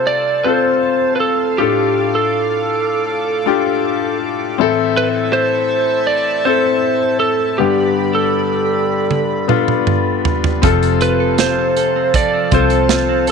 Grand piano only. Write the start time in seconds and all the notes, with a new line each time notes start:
Already playing: C3 C4 F4 A4
0.45 C4 F4 A4
1.58 A2 D4 F4 A4
3.46 D4 F4 G4
4.58 A2 E3 C4 E4 A4
6.45 C4 E4 A4
7.58 G2 D3 B3 D4 G4
9.48 B3 D4 F4
10.62 C3 C4 F4 A4
12.51 C4 F4 A4